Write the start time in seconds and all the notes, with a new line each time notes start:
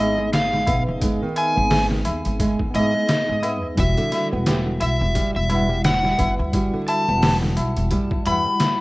Already playing: G#1 B3 G#4 D#5
0.00 G#2 D#4 G#4
0.18 G#3, tabla na
0.32 F5, snare, closed hi-hat, tabla na
0.53 G#3, snare, tabla na
0.67 B1 B3, kick, closed hi-hat, tabla na
0.87 F#1, tabla na
1.00 G#3 B3 D#4, kick, closed hi-hat, tabla na
1.05 G#4
1.22 D#3
1.36 G#5, closed hi-hat, tabla na
1.52 B3, tabla na
1.56 G#1 B3 D#4
1.61 G#4
1.70 G#4, snare, open hi-hat, tabla na
1.91 D#3, snare
2.05 D#2, closed hi-hat, tabla na
2.25 G#1, closed hi-hat, tabla na
2.40 G#3, kick, closed hi-hat, tabla na
2.59 kick, tabla na
2.71 G#2 B3, tabla na
2.75 G#2 D#4 D#5, closed hi-hat
2.80 G#4
2.93 G#3, tabla na
3.07 snare, closed hi-hat, tabla na
3.28 G#2 G#3, tabla na
3.43 B3, closed hi-hat, tabla na
3.62 D#2, tabla na
3.75 E1 G3 E4, kick, closed hi-hat, tabla na
3.80 F#4 E5
3.97 D3, closed hi-hat
4.12 snare, closed hi-hat, tabla na
4.27 G3
4.32 E1 B3 E4, tabla na
4.36 F#5
4.46 G4, snare, closed hi-hat, tabla na
4.66 D3
4.80 B1 E5, closed hi-hat, tabla na
5.01 E1, tabla na
5.15 G3, kick, closed hi-hat, tabla na
5.36 E1 E5, tabla na
5.46 G3, tabla na
5.50 G2 E4, closed hi-hat
5.55 F#5
5.69 G3, tabla na
5.84 F#5, snare, closed hi-hat, tabla na
6.04 G3, snare, tabla na
6.18 G1 B3, kick, closed hi-hat, tabla na
6.39 D2, tabla na
6.52 G3 E4, kick, closed hi-hat, tabla na
6.56 F#4
6.73 D3
6.88 A5, closed hi-hat, tabla na
7.04 G3
7.08 E1 B3 E4, tabla na
7.13 F#5
7.22 G4, snare, open hi-hat, tabla na
7.42 D3, snare
7.57 B1, closed hi-hat, tabla na
7.76 E1, closed hi-hat, tabla na
7.91 G3, kick, closed hi-hat, tabla na
8.11 kick, tabla na
8.23 E2 G2 G3, closed hi-hat, tabla na
8.27 E4 B5
8.31 F#5
8.44 G3, tabla na
8.60 snare, closed hi-hat, tabla na